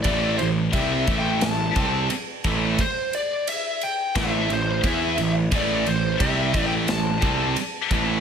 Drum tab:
RD |xxxxxxxx|xxxxxxxx|xxxxxxxx|
SD |----o---|----o---|----o---|
BD |o-oo-o-o|o---o-o-|o-oo-o-o|